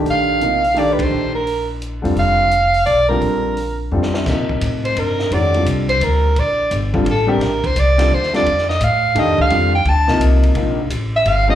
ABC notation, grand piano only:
X:1
M:3/4
L:1/8
Q:"Swing" 1/4=171
K:Bb
V:1 name="Grand piano"
[E,A,DG]2 [C,F,B,E] z [E,A,DG]2- | [E,A,DG] z4 [D,G,CF]- | [D,G,CF]2 z3 [D,G,CF]- | [D,G,CF]2 z2 [D,G,CF]2 |
[C,F,EB]4- [C,F,EB] z | [E,_A,_D_G] [=D,=G,CF]4 z | z3 [D,G,CF] z [D,G,CG] | z3 [D,G,CF] z [D,G,CF] |
z4 [E,A,DG]2 | [D,G,CF] z2 [C,F,B,E]3 | [C,F,B,E] z4 [D,G,CF] |]